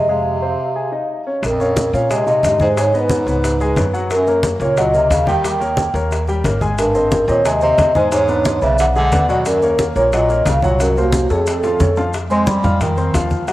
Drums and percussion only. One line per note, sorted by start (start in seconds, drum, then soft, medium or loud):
1.43 high bongo medium
1.43 high conga soft
1.43 maracas medium
1.60 high conga soft
1.60 maracas soft
1.76 high bongo medium
1.76 high conga medium
1.76 maracas medium
1.94 high conga soft
1.94 maracas soft
2.10 high bongo medium
2.10 high conga soft
2.10 maracas medium
2.27 high conga soft
2.27 maracas soft
2.43 high bongo medium
2.43 low bongo medium
2.43 high conga medium
2.43 maracas medium
2.60 high conga medium
2.60 maracas soft
2.76 high bongo medium
2.76 high conga soft
2.76 maracas medium
2.93 high bongo soft
2.93 high conga soft
2.93 maracas soft
3.09 high bongo medium
3.09 high conga medium
3.09 maracas medium
3.27 high bongo soft
3.27 high conga soft
3.27 maracas soft
3.44 high bongo medium
3.44 high conga soft
3.44 maracas medium
3.60 high bongo soft
3.60 high conga soft
3.60 maracas soft
3.76 high bongo medium
3.76 low bongo medium
3.76 high conga medium
3.76 maracas medium
3.94 maracas soft
4.11 high bongo medium
4.11 high conga soft
4.11 maracas medium
4.27 high conga soft
4.27 maracas soft
4.43 high bongo medium
4.43 high conga medium
4.43 maracas medium
4.60 high conga soft
4.60 maracas soft
4.77 high bongo medium
4.77 high conga soft
4.77 maracas medium
4.94 high conga soft
4.94 maracas soft
5.10 high bongo medium
5.10 low bongo medium
5.10 high conga medium
5.10 maracas medium
5.27 high conga medium
5.27 maracas soft
5.44 high bongo medium
5.44 high conga soft
5.44 maracas medium
5.61 high bongo soft
5.61 high conga soft
5.61 maracas soft
5.77 high bongo medium
5.77 high conga medium
5.77 maracas medium
5.94 high bongo soft
5.94 high conga soft
5.94 maracas soft
6.11 high bongo medium
6.11 high conga soft
6.11 maracas medium
6.28 high bongo soft
6.28 high conga soft
6.28 maracas soft
6.44 high bongo medium
6.44 low bongo medium
6.44 high conga medium
6.44 maracas medium
6.61 high conga medium
6.61 maracas soft
6.78 high bongo medium
6.78 high conga soft
6.78 maracas medium
6.95 high conga soft
6.95 maracas soft
7.12 high bongo medium
7.12 high conga medium
7.12 maracas medium
7.28 high conga soft
7.28 maracas soft
7.45 high bongo medium
7.45 high conga soft
7.45 maracas medium
7.61 high conga soft
7.61 maracas soft
7.78 high bongo medium
7.78 low bongo medium
7.78 high conga medium
7.78 maracas medium
7.95 high conga medium
7.95 maracas soft
8.11 high bongo medium
8.11 high conga soft
8.11 maracas medium
8.28 high bongo soft
8.28 high conga soft
8.28 maracas soft
8.45 high bongo medium
8.45 high conga medium
8.45 maracas medium
8.62 high bongo soft
8.62 high conga soft
8.62 maracas soft
8.79 high bongo medium
8.79 high conga soft
8.79 maracas medium
8.96 high bongo soft
8.96 high conga soft
8.96 maracas soft
9.12 high bongo medium
9.12 low bongo medium
9.12 high conga medium
9.12 maracas medium
9.29 maracas soft
9.46 high bongo medium
9.46 high conga soft
9.46 maracas medium
9.62 high conga soft
9.62 maracas soft
9.79 high bongo medium
9.79 high conga medium
9.79 maracas medium
9.96 high conga soft
9.96 maracas soft
10.13 high bongo medium
10.13 high conga soft
10.13 maracas medium
10.29 high conga soft
10.29 maracas soft
10.46 high bongo medium
10.46 low bongo medium
10.46 high conga medium
10.46 maracas medium
10.62 high conga medium
10.62 maracas soft
10.79 high bongo medium
10.79 high conga soft
10.79 maracas medium
10.96 high bongo soft
10.96 high conga soft
10.96 maracas soft
11.12 high bongo medium
11.12 high conga medium
11.12 maracas medium
11.29 high bongo soft
11.29 high conga soft
11.29 maracas soft
11.46 high bongo medium
11.46 high conga soft
11.46 maracas medium
11.63 high bongo medium
11.63 high conga soft
11.63 maracas soft
11.80 low bongo medium
11.80 high conga medium
11.80 maracas medium
11.97 low bongo medium
11.97 maracas soft
12.13 high bongo medium
12.13 high conga soft
12.13 maracas medium
12.30 high conga soft
12.30 maracas soft
12.47 high bongo medium
12.47 high conga medium
12.47 maracas medium
12.64 high conga soft
12.64 low conga medium
12.64 maracas soft
12.81 high bongo medium
12.81 high conga soft
12.81 low conga medium
12.81 maracas medium
12.98 high conga soft
12.98 maracas soft
13.14 high bongo medium
13.14 low bongo medium
13.14 high conga medium
13.14 maracas medium
13.31 high conga medium
13.31 maracas soft
13.48 high bongo medium
13.48 high conga soft
13.48 maracas medium